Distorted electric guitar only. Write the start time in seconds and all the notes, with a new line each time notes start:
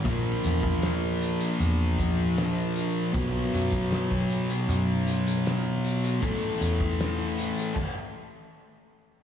0.04 A#2 F3 A#3
3.13 B2 F#3 B3
6.21 A2 E3 A3